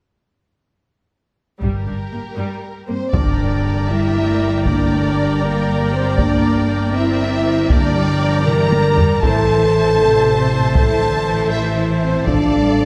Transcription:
1.61 G1 G2 G3 G4 A#4, taiko
1.86 G2 D4
2.12 G2 A#3
2.37 G2 G3
2.88 G2 A#3 C4 C5
3.12 G1 G3 D4 G4 A#4 D5 G5 A#5, taiko, impact
3.89 G3 E4 E5
4.15 A3
4.40 G3
4.66 A#3 D4 D5, taiko
4.91 A3
5.17 G3
5.42 A#3 A#4
5.92 C4 C5
6.18 A#3 D4 D5, taiko
6.94 C4 E4 E5
7.70 G1 G3 A#3 D4 G4 A#4 D5 G5 A#5, taiko
7.96 G3
8.21 F3
8.46 E3 A#4 A#5, taiko mid
8.72 D3, taiko high
8.97 G3, taiko low
9.22 A1 E3 A3 E4 A4 C5 E5 A5, taiko
10.00 C3
10.75 E3 A4 A5, taiko
11.01 D3
11.25 E3
11.52 E4 E5
12.02 C4 C5
12.27 A1 F3 D4 A4 D5 F5 A5, taiko
12.52 G3
12.78 F3

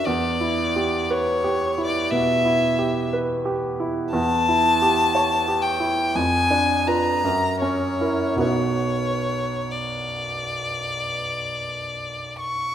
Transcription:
0.05 E2 D5
0.41 E4
0.76 G4
1.10 B4 C#5
1.44 G4
1.78 E4
1.85 D5
2.10 B2 E5
2.45 E4
2.79 G4
3.13 B4
3.45 G4
3.80 E4
4.12 E2 A5
4.48 E4
4.82 G4
5.15 C#5
5.48 G4
5.62 G5
5.80 E4
6.15 F2 G#5
6.51 D4
6.87 F4 B4 A#5
7.24 F#2
7.61 C#4 C#5
8.01 E4 A#4
8.36 B1 B3 F#4
8.40 B4 C#5
9.71 D5
12.40 C#6

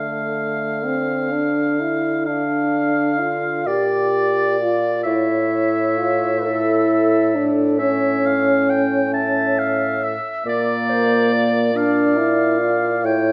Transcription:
Already playing: D3 A3 F5
0.85 C4
1.32 D4
1.80 E4
2.26 D4 F5
3.21 F4
3.66 A#2 G4 D5
4.61 F4
5.03 A2 E4 C#5 E5
5.99 F4
6.45 E4 A4
7.35 D4
7.79 C#4 C#5 E5
8.26 F5
8.70 G5
9.13 E5 A5
9.59 F5
10.03 E5
10.45 A#2 A#3 D5
10.89 C5
11.33 D5
11.75 D4 F5
12.17 E4
12.59 F4
13.04 A2 E4 C#5 G5

